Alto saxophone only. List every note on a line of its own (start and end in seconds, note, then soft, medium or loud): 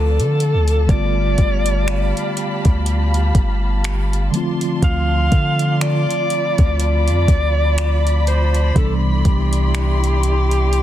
0.00 0.92 A4 medium
0.90 2.86 D5 loud
4.84 5.78 F5 loud
5.82 6.76 D5 loud
6.80 8.23 D5 loud
8.28 8.73 C5 medium
8.77 8.93 A4 medium
9.26 10.83 G4 medium